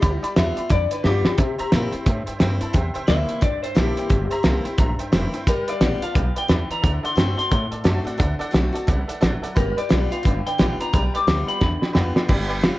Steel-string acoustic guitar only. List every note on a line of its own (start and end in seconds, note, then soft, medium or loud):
0.04 0.35 G3 medium
0.36 0.56 G3 medium
0.36 0.57 B3 loud
0.36 0.57 F4 medium
0.58 0.71 B3 medium
0.58 0.70 F4 medium
0.71 1.36 D3 medium
1.04 1.24 G3 medium
1.04 1.25 B3 medium
1.04 1.23 F4 loud
1.25 1.39 B3 soft
1.25 1.38 F4 medium
1.39 2.04 C3 medium
1.72 1.92 E3 medium
1.72 1.92 A#3 medium
1.72 1.93 C4 medium
1.72 1.91 E4 loud
1.93 2.07 C4 soft
1.93 2.06 E4 medium
2.07 2.72 G2 medium
2.41 2.61 E3 medium
2.41 2.61 A#3 medium
2.41 2.62 C4 medium
2.41 2.60 E4 loud
2.61 2.75 C4 soft
2.61 2.74 E4 medium
2.73 3.39 C3 medium
3.07 3.41 E3 medium
3.07 3.41 A#3 loud
3.07 3.41 C4 medium
3.07 3.42 E4 loud
3.41 4.07 G2 medium
3.75 4.08 E3 medium
3.75 4.09 A#3 medium
3.75 4.09 C4 loud
3.75 4.09 E4 loud
4.09 4.76 C3 medium
4.43 4.64 E3 medium
4.43 4.65 A#3 loud
4.43 4.65 C4 medium
4.43 4.64 E4 loud
4.65 4.79 C4 soft
4.65 4.78 E4 medium
4.78 5.44 G2 loud
5.13 5.33 E3 medium
5.13 5.33 A#3 loud
5.13 5.33 C4 loud
5.13 5.33 E4 loud
5.34 5.48 C4 soft
5.34 5.47 E4 medium
5.47 5.79 G3 medium
5.81 6.01 G3 medium
5.81 6.02 B3 medium
5.81 6.01 F4 medium
6.02 6.16 B3 soft
6.02 6.15 F4 medium
6.16 6.48 B2 loud
6.48 6.82 E3 medium
6.83 7.14 D3 medium
7.15 7.37 D3 medium
7.15 7.37 A3 medium
7.15 7.37 C4 medium
7.15 7.35 F#4 loud
7.36 7.51 C4 soft
7.36 7.50 F#4 medium
7.52 8.17 A2 medium
7.84 8.05 D3 medium
7.84 8.05 A3 medium
7.84 8.06 C4 medium
7.84 8.03 F#4 loud
8.04 8.20 C4 soft
8.04 8.18 F#4 medium
8.18 8.50 D3 medium
8.51 8.73 D3 medium
8.51 8.73 A3 medium
8.51 8.73 C4 medium
8.51 8.71 F#4 medium
8.72 8.88 C4 soft
8.72 8.87 F#4 medium
8.87 9.21 E3 medium
9.21 9.55 F#3 medium
9.56 9.88 G3 medium
9.89 10.10 G3 medium
9.89 10.11 B3 loud
9.89 10.09 F4 medium
10.10 10.25 B3 soft
10.10 10.24 F4 medium
10.23 10.90 D3 loud
10.58 10.79 G3 medium
10.58 10.79 B3 loud
10.58 10.78 F4 medium
10.80 10.94 B3 soft
10.80 10.92 F4 medium
10.93 11.26 G3 medium
11.27 11.60 G3 medium
11.27 11.60 B3 medium
11.27 11.61 F4 loud
11.61 12.27 D3 medium
11.95 12.15 G3 medium
11.95 12.16 B3 loud
11.95 12.15 F4 medium
12.16 12.30 B3 soft
12.16 12.29 F4 medium
12.28 12.60 G3 medium
12.61 12.79 G3 loud
12.61 12.79 B3 loud
12.61 12.79 F4 loud